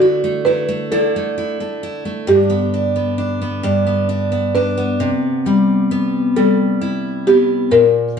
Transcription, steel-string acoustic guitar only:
Already playing: D3 A3
0.01 E4
0.24 A3
0.46 E4
0.69 A3
0.92 D3 E4
1.16 A3
1.38 E4
1.60 A3
1.83 E4
2.05 A3
2.27 G2 D4
2.50 B3
2.74 D4
2.96 B3
3.18 D4
3.42 B3
3.63 G2 D4
3.87 B3
4.09 D4
4.32 B3
4.55 D4
4.77 B3
5.00 C3
5.46 G3
5.91 B3
6.36 G3
6.81 E4
7.27 B3
7.71 A#2

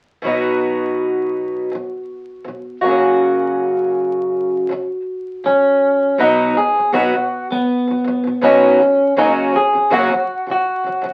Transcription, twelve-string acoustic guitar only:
0.22 B2 F#3 B3
0.26 D#4 F#4
1.72 B2 F#3
2.45 B2 F#3
2.81 F#3 A#3 C#4 F#4
2.86 F#2 C#3
4.69 F#2 C#3 F#3
5.44 F#2 C#3 F#3
6.18 B2 F#3 B3 D#4 F#4
6.55 B2 F#3
6.75 B2 F#3
6.93 B2 F#3 B3 D#4 F#4
7.13 B2 F#3
7.50 B2 F#3
7.88 B2 F#3
8.04 B2 F#3
8.24 B2 F#3
8.41 B2 F#3 B3 D#4 F#4
8.79 F#2 C#3 F#3
9.16 F#2 C#3 F#3 A#3 C#4 F#4
9.54 F#2 C#3 F#3
9.73 F#2 C#3 F#3
9.90 F#2 C#3 F#3 A#3 C#4 F#4
10.10 F#2 C#3 F#3
10.47 F#2 C#3 F#3
10.84 F#2 C#3 F#3
11.02 F#2 C#3 F#3

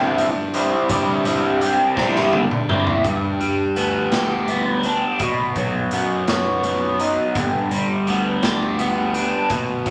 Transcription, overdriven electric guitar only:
Already playing: G3 C4 E4 G4
0.54 G3 C4 E4 G4
0.91 G3 C4 E4 G4
1.26 G3 C4 E4 G4
1.61 G3 C4 E4 G4
1.96 G3 C4 E4 G4
2.69 G3 C4 E4 G4
3.05 G2
3.41 G3
3.76 B3
4.13 G4
4.49 B3
4.85 D4
5.21 B2
5.57 F#3
5.93 B3
6.29 F#4
6.64 B3
7.00 D#4
7.36 G2
7.71 G3
8.08 B3
8.43 G4
8.79 B3
9.15 D4
9.51 B2
9.87 F#3

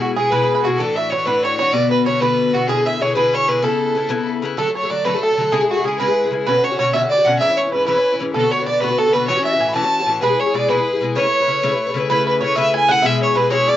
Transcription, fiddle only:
0.00 F#4
0.14 G#4
0.30 B4
0.62 F#4
0.77 A4
0.95 E5
1.10 C#5
1.25 B4
1.43 C#5
1.57 C#5
1.72 D5
1.91 B4
2.06 C#5
2.20 B4
2.53 F#4
2.67 G#4
2.86 E5
3.01 C#5
3.15 B4
3.34 C#5
3.48 B4
3.63 A4
4.58 A4
4.76 C#5
4.90 D5
5.04 B4
5.21 A4
5.52 G#4
5.70 F#4
5.84 G#4
5.99 B4
6.45 B4
6.63 C#5
6.78 C#5
6.93 E5
7.09 D5
7.24 F#5
7.39 E5
7.57 C#5
7.72 B4
7.86 B4
8.33 A4
8.51 C#5
8.65 D5
8.80 B4
8.98 A4
9.12 B4
9.27 C#5
9.44 E5
9.75 A5
10.22 B4
10.39 C#5
10.54 D5
10.68 B4
11.15 C#5
12.11 B4
12.29 B4
12.43 C#5
12.59 E5
12.75 G#5
12.91 F#5
13.06 E5
13.23 C#5
13.37 B4
13.51 C#5
13.68 D5

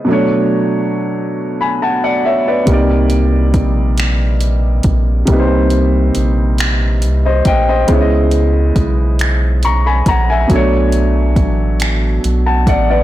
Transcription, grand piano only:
0.05 B2 F#3 A3
0.10 D4 C#5
1.61 G#5 B5
1.82 F#5 A5
2.04 D5 F#5
2.25 C#5 E5
2.48 B4 D5
2.65 C3 G3
2.69 A#3 D#4 D5
5.25 C3 G3 A#3
5.32 D#4 B4
5.40 C5
7.25 C5 D#5
7.47 D#5 G5
7.69 C5 D#5
7.87 C#3 G#3 B3
7.92 E4 C#5
8.01 D#5
9.65 A#5 C#6
9.86 G#5 B5
10.08 F#5 A#5
10.30 E5 G#5
10.47 B2 F#3 A3
10.53 D4 C#5
12.46 F#5 A5
12.68 D5 F#5
12.90 B4 D5

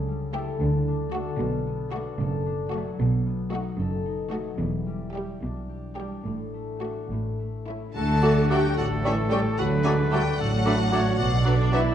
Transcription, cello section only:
Already playing: C#3
0.61 D3
1.40 B2
2.19 F#2
3.00 B2
3.79 F#2
4.60 E2
5.42 B2
6.26 A2
7.11 A2
7.95 D3
8.78 A2
9.59 D3
10.39 A2
11.19 B2

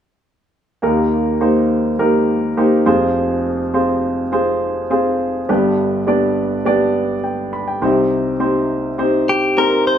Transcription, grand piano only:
0.82 D#2 D#3 A#3 D#4 G4 A#4
1.41 A#3 D#4 G4 C5
1.99 A#3 D#4 G4 A#4
2.57 A#3 D#4 G4 C5
2.86 F1 F2 C4 F4 G#4 C5
3.74 C4 F4 G#4 C5
4.32 C4 F4 G#4 C5
4.90 C4 F4 G#4 C5
5.49 G1 G2 B3 D4 G4 B4
6.07 B3 D4 G4 D5
6.65 B3 D4 G4 D5
7.24 G5
7.53 B5
7.68 G5
7.82 C2 C3 C4 D#4 G4 C5
8.39 C4 D#4 G4 C5
8.98 C4 D#4 G4 C5
9.57 C4 D#4 G4 A#4

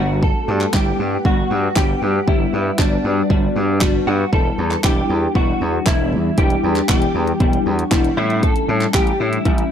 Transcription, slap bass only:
Already playing: G1
0.48 G2
0.74 G1
0.99 G2
1.25 G1
1.50 G2
1.76 G1
2.02 G2
2.28 G1
2.53 G2
2.79 G1
3.04 G2
3.30 G1
3.56 G2
3.82 G1
4.07 G2
4.33 E1
4.58 E2
4.84 E1
5.09 E2
5.35 E1
5.61 E2
5.87 E1
6.12 E2
6.38 E1
6.63 E2
6.89 E1
7.15 E2
7.40 E1
7.66 E2
7.92 E1
8.17 A2
8.68 A2
8.94 A1
9.20 A2
9.45 A1

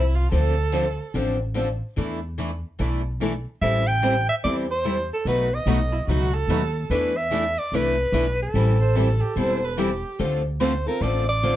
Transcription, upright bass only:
Already playing: C2
0.32 D2
1.14 A1
1.97 E2
2.79 B1
3.62 A1
4.44 E2
5.25 B1
5.66 B1
6.07 C#2
6.47 D#2
6.90 E2
7.72 C2
8.12 B1
8.54 A1
9.36 E1
10.20 D2
11.01 A1

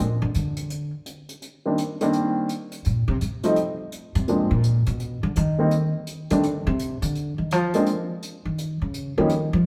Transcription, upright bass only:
0.00 A#2
0.22 D3
0.35 D3
2.86 A#2
3.08 C3
3.21 C3
4.15 C3
4.51 A#2
4.87 B2
5.23 D3
5.37 D#3
6.31 D3
6.67 C3
7.02 D3
7.38 D#3
7.52 F3
8.45 D#3
8.82 C#3
9.18 D#3
9.53 F3

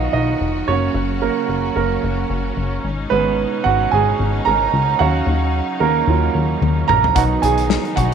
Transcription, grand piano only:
Already playing: F#3 B3 D#4 F4 F#4 D#5 F5 F#5
0.13 D#4 D#5
0.68 F#3 A#3 C#4 C#5
1.22 A#3 A#4
1.76 A#3 A#4
3.10 G#3 B3 B4
3.64 F#4 F#5
3.91 G#4 G#5
4.45 A#4 A#5
4.99 F#3 C#4 F#4 F5 F#5
5.80 A#3 A#4
6.08 F#3 C#4 F4
6.88 A#4 A#5
7.15 F#3 B3 D#4 F#4 F#5
7.42 G#4 G#5
7.96 F#4 F#5

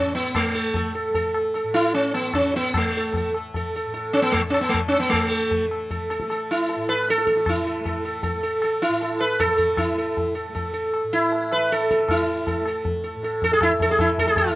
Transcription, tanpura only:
Already playing: A2 A3
0.00 E3
0.54 A3
1.10 A3
1.63 A2
2.20 E3
2.76 A3
3.31 A3
3.85 A2
4.40 E3
4.93 A3
5.11 E3
5.67 A3
6.22 A3
6.76 A2
7.29 E3
7.80 A3
8.36 A3
8.89 A2
9.41 E3
9.94 A3
10.49 A3
11.03 A2
11.56 E3
12.08 A3
12.61 A3
13.15 A2
13.69 E3
14.20 A3
14.38 E3

